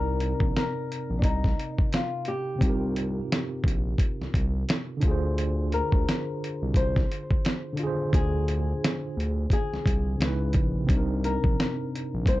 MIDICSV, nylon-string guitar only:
0, 0, Header, 1, 2, 480
1, 0, Start_track
1, 0, Tempo, 689655
1, 1817, Time_signature, 4, 2, 24, 8
1, 8630, End_track
2, 0, Start_track
2, 0, Title_t, "Nylon-string guitar"
2, 0, Program_c, 0, 24
2, 0, Note_on_c, 0, 70, 93
2, 385, Note_off_c, 0, 70, 0
2, 393, Note_on_c, 0, 70, 85
2, 799, Note_off_c, 0, 70, 0
2, 826, Note_on_c, 0, 62, 65
2, 861, Note_off_c, 0, 62, 0
2, 865, Note_on_c, 0, 63, 82
2, 1344, Note_off_c, 0, 63, 0
2, 1346, Note_on_c, 0, 65, 82
2, 1585, Note_on_c, 0, 67, 82
2, 1589, Note_off_c, 0, 65, 0
2, 2513, Note_off_c, 0, 67, 0
2, 3992, Note_on_c, 0, 70, 75
2, 4705, Note_off_c, 0, 70, 0
2, 4707, Note_on_c, 0, 72, 92
2, 5394, Note_off_c, 0, 72, 0
2, 5668, Note_on_c, 0, 68, 92
2, 6624, Note_off_c, 0, 68, 0
2, 6632, Note_on_c, 0, 68, 87
2, 7317, Note_off_c, 0, 68, 0
2, 7828, Note_on_c, 0, 70, 78
2, 8546, Note_off_c, 0, 70, 0
2, 8549, Note_on_c, 0, 72, 104
2, 8630, Note_off_c, 0, 72, 0
2, 8630, End_track
0, 0, End_of_file